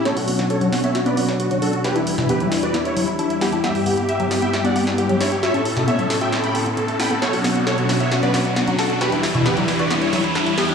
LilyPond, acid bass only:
\new Staff \with { instrumentName = "Acid bass" } { \time 4/4 \key b \minor \tempo 4 = 134 b16 r16 b16 b16 r16 fis16 b16 b16 r16 b16 b16 r16 b16 fis16 d'16 r16 | fis'16 d'16 r16 b,16 b16 fis16 r16 fis'16 b16 r16 fis16 e'16 d'16 r16 b16 d'16 | b16 r16 b16 b16 r16 fis16 b16 b16 r16 b16 b16 r16 b16 fis16 d'16 r16 | fis'16 cis'16 r16 b,16 b16 fis16 r16 fis'16 b16 r16 b16 b16 b16 r16 b16 b16 |
b16 r16 b16 b16 r16 fis16 b16 b16 r16 b16 b16 r16 b16 fis16 d'16 r16 | fis'16 d'16 r16 b,16 b16 fis16 r16 fis'16 b16 r16 fis16 e'16 d'16 r16 b16 d'16 | }